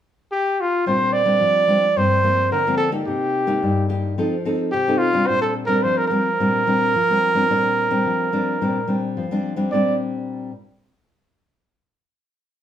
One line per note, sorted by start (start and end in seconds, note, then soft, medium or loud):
0.32 0.62 G4 medium
0.61 0.86 F4 medium
0.86 1.39 A#2 medium
0.86 1.23 G3 medium
0.86 1.24 C4 medium
0.86 1.24 D4 medium
0.86 1.14 C5 medium
1.13 1.99 D5 loud
1.25 1.64 G3 medium
1.25 1.64 C4 medium
1.25 1.64 D4 medium
1.40 1.93 F3 medium
1.67 1.85 G3 medium
1.67 1.85 C4 soft
1.67 1.85 D4 medium
1.96 2.49 G2 medium
1.96 2.20 F3 medium
1.96 2.20 A#3 medium
1.96 2.21 C4 medium
1.96 2.51 C5 medium
2.24 2.61 F3 medium
2.24 2.61 A#3 medium
2.24 2.62 C4 medium
2.51 3.04 D3 medium
2.51 2.77 A#4 medium
2.67 2.90 F3 medium
2.67 2.90 A#3 medium
2.67 2.90 C4 medium
2.77 2.90 A4 medium
2.92 3.44 A#3 medium
2.92 3.44 D#4 medium
2.92 3.44 G4 medium
3.07 3.60 C3 medium
3.07 3.86 G4 medium
3.47 3.85 A#3 medium
3.47 3.85 D#4 medium
3.47 3.86 G4 medium
3.63 4.15 G2 medium
3.89 4.13 A#3 soft
3.89 4.13 D#4 soft
3.89 4.13 G4 medium
4.18 4.71 F3 medium
4.18 4.34 C4 medium
4.18 4.34 D#4 medium
4.18 4.35 A4 medium
4.45 4.71 C4 medium
4.45 4.72 D#4 medium
4.45 4.72 A4 medium
4.72 5.26 C3 medium
4.72 4.99 G4 medium
4.88 5.11 C4 medium
4.88 5.11 D#4 medium
4.88 5.11 A4 medium
4.98 5.28 F4 medium
5.13 5.65 G3 medium
5.13 5.65 C4 medium
5.13 5.65 D4 medium
5.27 5.81 A#2 medium
5.27 5.41 C5 loud
5.42 5.54 A4 medium
5.66 6.06 G3 medium
5.66 6.06 C4 medium
5.66 6.06 D4 medium
5.66 5.84 A#4 medium
5.83 6.37 F3 medium
5.83 5.99 C5 loud
5.97 6.07 A#4 medium
6.08 6.27 G3 medium
6.08 6.28 C4 medium
6.08 6.28 D4 medium
6.08 9.10 A#4 medium
6.40 6.92 A#2 medium
6.40 6.63 G3 medium
6.40 6.63 C4 medium
6.40 6.63 D4 medium
6.67 6.93 G3 medium
6.67 6.93 C4 medium
6.67 6.93 D4 medium
6.96 7.48 F3 medium
7.10 7.32 G3 medium
7.10 7.33 C4 medium
7.10 7.33 D4 medium
7.34 7.45 G3 medium
7.34 7.45 C4 medium
7.34 7.45 D4 medium
7.50 8.03 A#2 medium
7.50 7.87 G3 medium
7.50 7.87 C4 medium
7.50 7.87 D4 medium
7.91 8.28 G3 medium
7.91 8.28 C4 medium
7.91 8.28 D4 medium
8.06 8.58 F3 medium
8.32 8.56 G3 medium
8.32 8.56 C4 medium
8.32 8.56 D4 medium
8.61 9.14 A#2 medium
8.61 8.77 G3 medium
8.61 8.77 C4 medium
8.61 8.78 D4 medium
8.88 9.25 G3 medium
8.88 9.25 C4 soft
8.88 9.26 D4 medium
9.17 9.69 F3 medium
9.31 9.54 G3 medium
9.31 9.54 C4 medium
9.31 9.54 D4 medium
9.56 9.72 G3 medium
9.56 9.72 C4 medium
9.56 9.73 D4 medium
9.72 10.50 A#2 medium
9.72 10.50 G3 medium
9.72 10.50 C4 medium
9.72 10.50 D4 medium
9.72 9.97 D5 medium